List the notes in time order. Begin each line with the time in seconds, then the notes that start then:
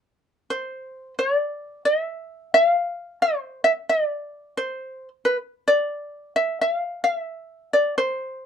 0.50 C5
1.19 D5
1.85 E5
2.54 E5
2.65 F5
3.22 C5
3.64 E5
3.89 D5
4.57 C5
5.25 B4
5.68 D5
6.36 E5
6.61 E5
6.72 F5
7.04 F5
7.15 E5
7.73 D5
7.98 C5